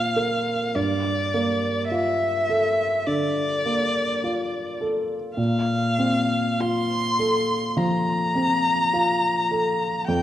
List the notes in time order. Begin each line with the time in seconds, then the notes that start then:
Already playing: A#2 C4 F4 F5
0.16 A#4
0.75 G2 D5
1.34 A#3
1.89 F4 E5
2.49 A4
3.07 D3 D5
3.66 A#3
4.24 F4
4.81 A4
5.37 A#2 F5
5.98 C4
6.60 F4 C6
7.19 A4
7.77 F3 A#5
8.35 C4
8.93 F4
9.51 A4
10.08 F2 G5